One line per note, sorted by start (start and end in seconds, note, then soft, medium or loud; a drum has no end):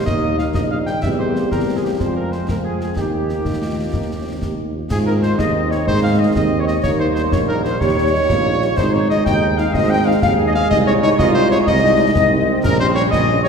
0.00 0.99 D#3 medium
0.00 1.02 A#3 medium
0.05 0.47 D#2 medium
0.05 1.04 D#4 medium
0.05 0.36 D#5 medium
0.05 0.36 D#5 loud
0.05 concert bass drum medium
0.05 snare medium
0.23 0.28 G3 medium
0.23 0.28 A#3 medium
0.23 0.28 D#4 medium
0.39 0.45 G3 medium
0.39 0.45 A#3 medium
0.39 0.45 D#4 medium
0.39 0.46 F5 medium
0.39 0.46 F5 loud
0.39 snare medium
0.54 0.91 A#1 medium
0.54 0.62 D#5 medium
0.54 0.62 D#5 loud
0.54 concert bass drum medium
0.54 snare medium
0.71 0.77 G3 medium
0.71 0.77 A#3 medium
0.71 0.77 D#4 medium
0.71 0.78 F5 medium
0.86 0.92 G3 medium
0.86 0.92 A#3 medium
0.86 0.93 D#4 medium
0.86 1.02 G5 loud
0.86 1.03 G5 medium
0.86 snare medium
1.02 1.46 E2 medium
1.02 1.48 G3 medium
1.02 1.96 G3 medium
1.02 1.48 A#3 medium
1.02 1.96 A#3 medium
1.02 1.48 C4 medium
1.02 2.02 G4 medium
1.02 1.10 E5 loud
1.02 1.20 E5 medium
1.02 concert bass drum medium
1.02 snare medium
1.02 crash soft
1.19 1.52 C5 medium
1.19 1.49 C5 medium
1.36 snare medium
1.51 1.94 E2 medium
1.51 1.97 G3 medium
1.51 1.97 A#3 medium
1.51 1.97 C4 medium
1.51 1.62 A#4 medium
1.51 1.79 A#4 medium
1.51 concert bass drum medium
1.51 snare medium
1.77 1.80 G#4 medium
1.77 1.85 G#4 medium
1.84 2.01 G4 medium
1.84 1.92 G4 medium
1.99 2.43 F2 medium
1.99 2.97 F3 medium
1.99 2.97 G#3 medium
1.99 2.93 C4 medium
1.99 2.97 F4 medium
1.99 2.16 C5 medium
1.99 2.08 C5 medium
1.99 concert bass drum medium
1.99 snare medium
2.16 2.31 A#4 medium
2.16 2.34 A#4 medium
2.32 2.47 C5 medium
2.32 2.49 C5 medium
2.32 snare soft
2.48 2.91 F2 medium
2.48 2.55 A#4 medium
2.48 2.57 A#4 medium
2.48 concert bass drum medium
2.48 snare medium
2.64 2.79 G#4 medium
2.64 2.80 G#4 medium
2.81 2.96 G#4 medium
2.81 2.90 G#4 medium
2.81 snare soft
2.97 3.40 D#2 medium
2.97 4.71 D#3 medium
2.97 4.71 A#3 medium
2.97 4.75 A#3 medium
2.97 4.71 D#4 medium
2.97 3.39 G4 medium
2.97 4.71 G4 medium
2.97 4.72 G4 medium
2.97 concert bass drum medium
2.97 snare medium
3.29 snare medium
3.45 3.88 D#2 medium
3.45 3.60 G4 medium
3.45 concert bass drum medium
3.45 snare medium
3.62 3.92 F4 medium
3.93 4.37 D#2 medium
3.93 4.17 D#4 medium
3.93 concert bass drum medium
3.93 snare medium
4.19 4.25 C#4 medium
4.26 4.41 C4 medium
4.42 4.85 D#2 medium
4.42 4.53 G4 medium
4.42 concert bass drum medium
4.42 snare medium
4.68 4.71 D#4 medium
4.76 4.83 F4 medium
4.88 5.31 G#2 medium
4.88 6.79 D#3 medium
4.88 6.79 C4 medium
4.88 5.40 F4 loud
4.88 4.97 G#4 medium
4.88 5.06 G#4 medium
4.88 4.98 G#4 loud
4.88 concert bass drum medium
4.88 snare medium
4.88 crash medium
5.06 5.13 G#3 medium
5.06 5.13 C4 medium
5.06 5.13 D#4 medium
5.06 5.13 A#4 medium
5.06 5.12 A#4 medium
5.06 5.14 A#4 loud
5.22 5.28 G#3 medium
5.22 5.28 C4 medium
5.22 5.29 D#4 medium
5.22 5.29 C5 medium
5.22 5.38 C5 medium
5.22 5.41 C5 loud
5.22 snare medium
5.38 5.79 D#2 medium
5.38 5.86 D#4 medium
5.38 5.68 D#5 medium
5.38 5.69 D#5 medium
5.38 5.73 D#5 loud
5.38 concert bass drum medium
5.38 snare medium
5.55 5.61 G#3 medium
5.55 5.61 C4 medium
5.55 5.61 D#4 medium
5.70 5.77 G#3 medium
5.70 5.77 C4 medium
5.70 5.77 D#4 medium
5.70 5.78 C#5 medium
5.70 5.86 C#5 medium
5.70 5.87 C#5 loud
5.70 snare medium
5.86 6.28 G#2 medium
5.86 6.32 D#4 medium
5.86 6.03 C5 loud
5.86 5.94 C5 loud
5.86 6.03 C5 loud
5.86 concert bass drum medium
5.86 snare medium
6.02 6.10 G#3 medium
6.02 6.10 C4 medium
6.02 6.10 D#4 medium
6.02 6.19 F5 medium
6.02 6.21 F5 loud
6.02 6.11 F5 medium
6.18 6.26 G#3 medium
6.18 6.26 C4 medium
6.18 6.26 D#4 medium
6.18 6.24 D#5 medium
6.18 6.35 D#5 medium
6.18 6.34 D#5 medium
6.34 6.76 D#2 medium
6.34 6.81 C4 medium
6.34 6.40 D#5 medium
6.34 6.46 D#5 medium
6.34 6.62 D#5 loud
6.34 concert bass drum medium
6.34 snare medium
6.52 6.58 G#3 medium
6.52 6.58 C4 medium
6.52 6.58 D#4 medium
6.58 6.62 C#5 medium
6.58 6.64 C#5 medium
6.58 6.67 C#5 loud
6.67 6.75 G#3 medium
6.67 6.74 C4 medium
6.67 6.74 D#4 medium
6.67 6.82 D#5 medium
6.67 6.75 D#5 loud
6.67 6.76 D#5 medium
6.67 snare medium
6.83 7.24 D#2 medium
6.83 8.78 G3 medium
6.83 7.29 A#3 medium
6.83 8.74 D#4 medium
6.83 6.98 C#5 loud
6.83 6.90 C#5 loud
6.83 6.91 C#5 loud
6.83 concert bass drum medium
6.83 snare medium
6.83 crash soft
6.98 7.06 G3 medium
6.98 7.06 A#3 medium
6.98 7.06 D#4 medium
6.98 7.14 C5 loud
6.98 7.07 C5 medium
6.98 7.07 C5 loud
7.15 7.23 G3 medium
7.15 7.23 A#3 medium
7.15 7.23 D#4 medium
7.15 7.21 C5 medium
7.15 7.23 C5 loud
7.15 7.31 C5 medium
7.15 snare medium
7.31 7.73 A#1 medium
7.31 7.77 A#3 medium
7.31 7.47 C#5 medium
7.31 7.39 C#5 loud
7.31 7.40 C#5 medium
7.31 concert bass drum medium
7.31 snare medium
7.48 7.54 G3 medium
7.48 7.54 A#3 medium
7.48 7.54 D#4 medium
7.48 7.54 A#4 medium
7.48 7.63 A#4 loud
7.48 7.56 A#4 medium
7.64 7.70 G3 medium
7.64 7.70 A#3 medium
7.64 7.70 D#4 medium
7.64 7.70 C5 medium
7.64 7.82 C5 loud
7.64 7.72 C5 medium
7.64 snare medium
7.80 8.21 D#2 loud
7.80 8.26 G4 loud
7.80 8.79 C#5 loud
7.80 8.73 C#5 loud
7.80 8.47 C#5 loud
7.80 concert bass drum medium
7.80 snare medium
7.96 8.02 G3 medium
7.96 8.02 A#3 medium
7.96 8.02 D#4 medium
8.12 8.18 G3 medium
8.12 8.18 A#3 medium
8.12 8.18 D#4 medium
8.28 8.65 A#1 medium
8.28 8.73 F4 loud
8.28 concert bass drum medium
8.28 snare medium
8.45 8.51 G3 medium
8.45 8.51 A#3 medium
8.45 8.51 D#4 medium
8.62 8.68 G3 medium
8.62 8.67 A#3 medium
8.62 8.68 D#4 medium
8.62 snare medium
8.76 9.18 G#1 medium
8.76 10.68 G#3 medium
8.76 9.22 D#4 loud
8.76 10.67 D#4 medium
8.76 8.83 C5 loud
8.76 8.95 C5 loud
8.76 8.92 C5 loud
8.76 concert bass drum medium
8.76 snare medium
8.76 crash soft
8.92 9.00 G#3 medium
8.92 9.00 C4 medium
8.92 9.00 D#4 medium
8.92 9.00 C#5 medium
8.92 9.09 C#5 loud
8.92 8.99 C#5 loud
9.09 9.16 G#3 medium
9.09 9.16 C4 medium
9.09 9.16 D#4 medium
9.09 9.17 D#5 loud
9.09 9.25 D#5 loud
9.09 9.16 D#5 loud
9.09 snare medium
9.25 9.66 D#2 loud
9.25 9.71 D#4 loud
9.25 9.56 G5 loud
9.25 9.60 G5 loud
9.25 concert bass drum medium
9.25 snare medium
9.42 9.48 G#3 medium
9.42 9.48 C4 medium
9.42 9.48 D#4 medium
9.58 9.65 G#3 medium
9.58 9.65 C4 medium
9.58 9.65 D#4 medium
9.58 9.74 F5 loud
9.58 9.75 F5 loud
9.58 9.74 F5 medium
9.58 snare medium
9.74 10.15 G#1 loud
9.74 10.19 C4 loud
9.74 9.92 D#5 loud
9.74 9.89 D#5 loud
9.74 9.90 D#5 loud
9.74 concert bass drum medium
9.74 snare medium
9.89 9.96 G#3 medium
9.89 9.96 C4 medium
9.89 9.96 D#4 medium
9.89 9.97 G5 loud
9.89 10.07 G5 loud
9.89 10.06 G5 loud
10.06 10.13 G#3 medium
10.06 10.12 C4 medium
10.06 10.13 D#4 medium
10.06 10.22 F5 loud
10.06 10.12 F5 medium
10.06 10.14 F5 medium
10.22 10.63 D#2 loud
10.22 11.15 G#4 loud
10.22 10.33 F5 loud
10.22 10.45 F5 loud
10.22 concert bass drum medium
10.22 snare medium
10.40 10.45 G#3 medium
10.40 10.45 C4 medium
10.40 10.45 D#4 medium
10.47 10.50 D#5 medium
10.47 10.54 D#5 medium
10.47 10.51 D#5 loud
10.54 10.61 G#3 medium
10.54 10.60 C4 medium
10.54 10.61 D#4 medium
10.54 10.69 F5 loud
10.54 10.70 F5 loud
10.54 snare medium
10.70 11.11 C2 loud
10.70 12.47 G#3 loud
10.70 12.47 D#4 loud
10.70 10.86 D#5 loud
10.70 10.78 D#5 loud
10.70 concert bass drum medium
10.70 snare medium
10.70 crash soft
10.86 10.92 G#3 medium
10.86 10.92 C4 medium
10.86 10.92 D#4 medium
10.86 10.94 C#5 loud
10.86 11.02 C#5 loud
11.03 11.09 G#3 medium
11.03 11.09 C4 medium
11.03 11.09 D#4 medium
11.03 11.09 C#5 loud
11.03 11.10 C#5 loud
11.03 11.18 C#5 loud
11.03 snare medium
11.19 11.59 C2 loud
11.19 11.69 F4 loud
11.19 11.35 D#5 loud
11.19 11.34 D#5 loud
11.19 11.25 D#5 loud
11.19 concert bass drum loud
11.19 snare medium
11.35 11.41 G#3 medium
11.35 11.41 C4 medium
11.35 11.41 D#4 medium
11.35 11.50 C5 loud
11.35 11.42 C5 loud
11.50 11.57 G#3 medium
11.50 11.57 C4 medium
11.50 11.57 D#4 medium
11.50 11.67 C#5 loud
11.50 11.59 C#5 loud
11.50 11.58 C#5 loud
11.50 snare medium
11.66 12.08 C2 loud
11.66 12.16 D#4 loud
11.66 12.59 D#5 loud
11.66 12.32 D#5 loud
11.66 12.60 D#5 loud
11.66 concert bass drum medium
11.66 snare medium
11.84 11.90 G#3 medium
11.84 11.89 C4 medium
11.84 11.90 D#4 medium
12.00 12.06 G#3 medium
12.00 12.06 C4 medium
12.00 12.06 D#4 medium
12.15 12.56 C2 loud
12.15 13.32 C4 loud
12.15 concert bass drum medium
12.15 snare medium
12.32 12.38 G#3 medium
12.32 12.38 C4 medium
12.32 12.38 D#4 medium
12.49 12.55 G#3 medium
12.49 12.55 C4 medium
12.49 12.55 D#4 medium
12.63 13.04 A#1 loud
12.63 13.49 G3 medium
12.63 13.49 C#4 loud
12.63 12.70 A#4 loud
12.63 12.80 A#4 loud
12.63 12.79 A#4 loud
12.63 concert bass drum medium
12.63 snare medium
12.63 crash medium
12.79 12.87 G3 medium
12.79 12.87 C#4 medium
12.79 12.86 G4 medium
12.79 12.94 C5 loud
12.79 12.87 C5 loud
12.94 13.02 G3 medium
12.94 13.03 C#4 medium
12.94 13.02 G4 medium
12.94 13.02 C#5 loud
12.94 13.11 C#5 loud
12.94 13.03 C#5 loud
12.94 snare medium
13.11 13.49 A#1 loud
13.11 13.41 D#5 loud
13.11 13.42 D#5 loud
13.11 concert bass drum medium
13.11 snare medium
13.28 13.34 G3 medium
13.28 13.34 C#4 medium
13.28 13.34 G4 medium
13.43 13.49 G3 medium
13.43 13.49 C#4 medium
13.43 13.49 G4 medium
13.43 13.49 C#5 loud
13.43 snare medium